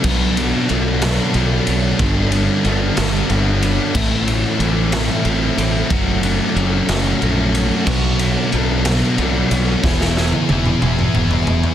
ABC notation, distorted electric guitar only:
X:1
M:6/8
L:1/8
Q:3/8=61
K:Bdor
V:1 name="Distorted electric guitar"
[B,,F,B,D] [F,B,D] [B,,F,B,D] [B,,F,B,D] [B,,F,B,D]2 | [=G,,D,=G,B,D] [G,B,D] [D,G,B,D] [G,,D,G,B,D] [D,G,B,D]2 | [A,,E,A,=CE] [A,CE] [E,A,CE] [A,,E,A,CE] [E,A,CE]2 | [F,A,CF] [A,CF] [F,A,CF] [F,A,CF] [F,A,CF]2 |
[B,,F,B,DF] [B,DF] [F,B,DF] [B,,F,B,DF] [F,B,DF]2 | [E,B,EG] [B,EG] [E,B,EG] [E,B,EG] [E,B,EG]2 |]